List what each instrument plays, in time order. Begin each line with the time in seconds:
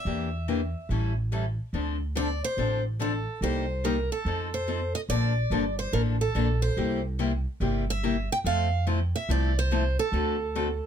Already playing: steel-string acoustic guitar E5
0.05 upright bass E2, steel-string acoustic guitar E3 A#3 D4 G4
0.48 steel-string acoustic guitar E3 A#3 D4 G4
0.89 upright bass A1, steel-string acoustic guitar E3 G3 C#4 E4 A4
1.32 steel-string acoustic guitar E3 G3 C#4 E4 A4
1.73 upright bass D2, steel-string acoustic guitar D3 F3 C4 D4 A4
2.15 steel-string acoustic guitar D3 F3 C4 D4 A4 D5
2.44 steel-string acoustic guitar C5
2.57 upright bass A1, steel-string acoustic guitar D3 F3 C4 D4 A4
2.99 steel-string acoustic guitar D3 F3 C4 D4 A4
3.41 upright bass C2, steel-string acoustic guitar C3 G3 A#3 D#4 G4 C5
3.84 steel-string acoustic guitar C3 G3 A#3 D#4 G4 A#4
4.12 steel-string acoustic guitar A4
4.25 upright bass F2, steel-string acoustic guitar F3 C4 D#4 A4
4.54 steel-string acoustic guitar C5
4.68 steel-string acoustic guitar F3 C4 D#4 A4
4.95 steel-string acoustic guitar D#5
5.09 upright bass A#1, steel-string acoustic guitar D3 F3 A#3 D4 A4 D5
5.50 upright bass G1, steel-string acoustic guitar D3 F3 A#3 D4 A4
5.79 steel-string acoustic guitar C5
5.93 upright bass A1, steel-string acoustic guitar D3 F3 A#3 D4 A4 A#4
6.21 steel-string acoustic guitar A4
6.35 upright bass A#1, steel-string acoustic guitar D3 F3 A#3 D4 A4
6.62 steel-string acoustic guitar C5
6.77 upright bass C2, steel-string acoustic guitar C3 G3 A#3 E4 G4
7.19 steel-string acoustic guitar C3 G3 A#3 E4 G4
7.60 upright bass G1, steel-string acoustic guitar C3 G3 A#3 E4 G4
7.90 steel-string acoustic guitar E5
8.03 steel-string acoustic guitar C3 G3 A#3 E4 G4
8.32 steel-string acoustic guitar G5
8.44 upright bass F2, steel-string acoustic guitar F3 A3 C4 E4 A4 F5
8.87 steel-string acoustic guitar F3 A3 C4 E4 A4
9.16 steel-string acoustic guitar E5
9.29 upright bass C2, steel-string acoustic guitar F3 A3 C4 E4 A4 D5
9.59 steel-string acoustic guitar C5
9.71 steel-string acoustic guitar F3 A3 C4 E4 A4
9.99 steel-string acoustic guitar A4
10.12 upright bass D2, steel-string acoustic guitar D3 A3 C4 F#4 A4
10.55 steel-string acoustic guitar D3 A3 C4 F#4 A4